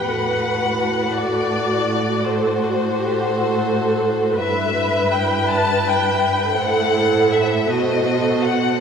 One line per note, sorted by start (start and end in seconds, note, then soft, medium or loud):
0.00 1.13 B4 soft
0.04 4.37 A2 soft
0.04 2.25 F#4 soft
0.04 2.25 A4 soft
0.04 1.14 F#5 medium
1.15 2.26 F#4 soft
1.15 2.25 D5 medium
2.25 4.37 F#4 soft
2.25 4.37 A4 soft
2.25 2.63 A4 soft
2.25 4.41 C5 medium
2.62 2.98 F#4 soft
2.97 3.34 G4 soft
3.33 4.38 A4 soft
4.39 6.57 G2 soft
4.39 6.54 E4 soft
4.39 6.53 B4 soft
4.39 6.53 B4 medium
4.39 5.10 E5 medium
5.12 5.48 G5 medium
5.48 5.85 A5 medium
5.86 6.58 G5 medium
6.55 7.68 A2 soft
6.55 7.67 E4 soft
6.55 7.70 A4 medium
6.55 7.67 C5 soft
6.55 7.32 F#5 medium
7.33 7.70 E5 medium
7.68 8.80 B2 soft
7.68 8.80 F#4 soft
7.68 8.80 A4 soft
7.68 8.80 C5 soft
7.68 8.47 D#5 medium
8.45 8.80 F#5 medium